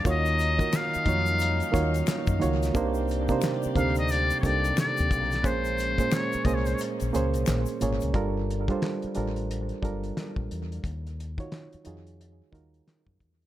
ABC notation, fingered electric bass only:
X:1
M:4/4
L:1/16
Q:"Swing 16ths" 1/4=89
K:Eblyd
V:1 name="Fingered electric bass" clef=bass
E,,4 z2 F,,4 E,,2 z _G,, _D,,2 | C,,4 z2 D,,4 C,,2 z E,, =B,,,2 | B,,,4 z2 C,,2 z B,,, _D,, C,, B,,, z _A,,, D,, | G,,,4 z2 A,,,4 G,,,2 z B,,, =E,,2 |
E,,4 z2 F,,4 E,,2 z _G,, =E,,2 |]